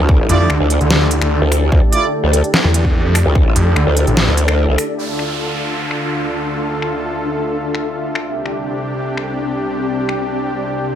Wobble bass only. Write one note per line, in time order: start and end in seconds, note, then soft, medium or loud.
0.00 0.18 D2 medium
0.19 0.28 A1 loud
0.60 0.79 D2 loud
1.42 1.71 D2 loud
1.72 1.81 D2 loud
2.24 2.42 D2 loud
3.26 3.44 D2 loud
3.46 3.54 A1 loud
3.87 4.06 D2 loud
4.28 4.67 D2 loud
4.68 4.77 C2 loud